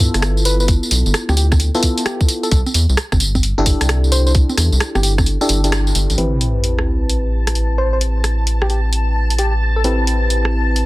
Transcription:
0.00 1.71 B3 medium
0.00 1.71 E4 medium
0.00 1.71 F4 medium
0.00 1.71 A4 loud
0.00 kick loud
0.14 0.78 G1 medium
0.14 cross-stick medium
0.14 closed hi-hat medium
0.14 tambourine soft
0.22 cross-stick loud
0.22 closed hi-hat medium
0.22 tambourine soft
0.37 tambourine soft
0.45 0.55 B4 medium
0.45 open hi-hat medium
0.45 tambourine medium
0.60 0.65 B4 medium
0.60 tambourine soft
0.68 kick loud
0.68 closed hi-hat medium
0.68 tambourine soft
0.83 tambourine soft
0.91 1.03 B1 medium
0.91 open hi-hat loud
0.91 tambourine medium
1.06 1.12 G1 medium
1.06 tambourine soft
1.14 cross-stick loud
1.14 closed hi-hat medium
1.14 tambourine soft
1.29 1.70 D2 loud
1.29 1.34 G4 medium
1.29 cross-stick medium
1.29 tambourine soft
1.29 high conga medium
1.37 1.46 G4 medium
1.37 open hi-hat medium
1.37 tambourine medium
1.52 kick loud
1.52 cross-stick medium
1.52 tambourine soft
1.52 high conga medium
1.60 closed hi-hat medium
1.60 tambourine soft
1.75 2.51 B3 medium
1.75 2.51 E4 medium
1.75 2.51 F4 medium
1.75 2.51 A4 loud
1.75 tambourine soft
1.83 kick medium
1.83 open hi-hat loud
1.83 tambourine medium
1.98 closed hi-hat medium
1.98 tambourine soft
2.05 2.20 G4 medium
2.05 cross-stick loud
2.05 closed hi-hat medium
2.05 tambourine soft
2.21 kick loud
2.21 tambourine soft
2.29 open hi-hat medium
2.29 tambourine medium
2.43 2.49 A4 medium
2.43 closed hi-hat soft
2.43 tambourine soft
2.51 2.63 C2 loud
2.51 2.61 A4 medium
2.51 kick loud
2.51 closed hi-hat medium
2.51 tambourine soft
2.66 tambourine soft
2.66 high conga medium
2.74 2.86 E2 medium
2.74 open hi-hat loud
2.74 tambourine medium
2.89 2.96 C2 medium
2.89 tambourine soft
2.97 cross-stick loud
2.97 closed hi-hat medium
2.97 tambourine soft
3.12 3.53 G1 loud
3.12 kick loud
3.12 cross-stick medium
3.12 tambourine soft
3.12 high conga medium
3.20 open hi-hat medium
3.20 tambourine medium
3.35 kick medium
3.35 tambourine soft
3.35 high conga medium
3.43 closed hi-hat medium
3.43 tambourine soft
3.58 3.74 G1 loud
3.58 5.38 D4 medium
3.58 5.38 E4 medium
3.58 5.38 G4 medium
3.58 5.38 A4 loud
3.66 kick medium
3.66 open hi-hat loud
3.66 tambourine medium
3.81 4.44 C2 medium
3.81 cross-stick medium
3.81 closed hi-hat medium
3.81 tambourine soft
3.89 cross-stick loud
3.89 closed hi-hat medium
3.89 tambourine soft
4.04 tambourine soft
4.12 4.21 C5 medium
4.12 open hi-hat medium
4.12 tambourine medium
4.27 4.32 C5 medium
4.27 tambourine soft
4.35 kick loud
4.35 closed hi-hat medium
4.35 tambourine soft
4.49 tambourine soft
4.49 high conga medium
4.57 4.69 E2 medium
4.57 cross-stick medium
4.57 open hi-hat loud
4.57 tambourine medium
4.72 4.79 C2 medium
4.72 tambourine soft
4.80 cross-stick loud
4.80 closed hi-hat medium
4.80 tambourine soft
4.95 5.36 G1 loud
4.95 5.00 G4 medium
4.95 cross-stick medium
4.95 tambourine soft
4.95 high conga medium
5.03 5.13 G4 medium
5.03 open hi-hat loud
5.03 tambourine medium
5.18 kick loud
5.18 cross-stick medium
5.18 tambourine soft
5.18 high conga medium
5.26 closed hi-hat medium
5.26 tambourine soft
5.41 5.61 D4 loud
5.41 5.61 E4 medium
5.41 5.61 G4 medium
5.41 5.61 A4 loud
5.41 tambourine soft
5.49 5.92 G1 loud
5.49 open hi-hat loud
5.49 tambourine medium
5.64 6.17 D4 medium
5.64 6.17 E4 medium
5.64 6.17 G4 medium
5.64 6.17 A4 medium
5.64 closed hi-hat medium
5.64 tambourine soft
5.72 cross-stick loud
5.72 closed hi-hat medium
5.72 tambourine soft
5.87 tambourine soft
5.95 6.07 G1 medium
5.95 open hi-hat loud
5.95 tambourine medium
6.10 6.16 A1 medium
6.10 closed hi-hat soft
6.10 tambourine soft
6.18 10.86 A1 medium
6.18 9.82 C4 medium
6.18 9.82 E4 medium
6.18 9.82 G4 medium
6.18 9.82 B4 medium
6.18 10.86 A5 medium
6.18 closed hi-hat medium
6.18 sub drop medium
6.41 closed hi-hat medium
6.64 closed hi-hat medium
6.79 cross-stick medium
7.10 closed hi-hat medium
7.47 cross-stick medium
7.47 closed hi-hat medium
7.55 closed hi-hat medium
7.78 7.88 C5 medium
7.93 7.98 C5 medium
8.01 closed hi-hat medium
8.24 cross-stick soft
8.24 closed hi-hat medium
8.47 closed hi-hat medium
8.62 8.67 G4 medium
8.62 cross-stick medium
8.70 8.79 G4 medium
8.70 closed hi-hat soft
8.93 closed hi-hat medium
9.30 closed hi-hat medium
9.38 9.53 G4 medium
9.38 closed hi-hat medium
9.76 9.81 A4 medium
9.84 10.86 C4 medium
9.84 10.86 E4 medium
9.84 10.86 G4 medium
9.84 10.86 B4 medium
9.84 closed hi-hat medium
10.07 closed hi-hat medium
10.30 closed hi-hat medium
10.45 cross-stick medium
10.76 closed hi-hat medium

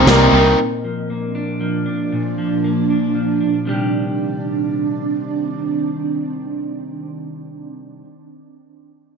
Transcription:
0.00 0.33 C3 medium
0.00 0.58 G3 medium
0.00 0.59 A#3 medium
0.00 0.56 C4 medium
0.00 0.32 D#4 medium
0.00 0.56 A#4 medium
0.00 0.56 D#5 medium
0.07 0.28 C2 loud
0.07 0.32 C3 loud
0.07 0.33 G3 loud
0.07 0.33 C4 loud
0.07 0.34 D#4 loud
0.07 0.59 A#4 medium
0.07 snare medium
0.07 closed hi-hat medium
0.33 0.54 C2 medium
0.33 0.57 C3 medium
0.33 0.58 G3 medium
0.33 0.58 C4 medium
0.33 0.59 D#4 medium
0.33 0.58 D#4 medium
0.57 3.63 A#2 medium
0.57 1.87 A#2 soft
0.57 3.63 F3 medium
0.57 3.63 D4 medium
0.84 1.59 F3 soft
1.10 2.38 A#3 soft
1.35 1.85 D4 soft
1.61 2.37 F3 soft
1.86 2.89 D4 soft
2.12 3.41 A#2 soft
2.38 3.14 F3 soft
2.64 3.67 A#3 soft
2.90 3.39 D4 soft
3.15 3.66 F3 soft
3.41 3.67 D4 soft
3.65 8.01 C3 soft
3.65 8.02 D#3 soft
3.65 7.52 D#3 medium
3.65 8.03 G3 medium
3.65 7.52 C4 soft
3.65 7.52 D4 medium
3.65 8.04 D4 medium
3.65 8.05 G4 soft

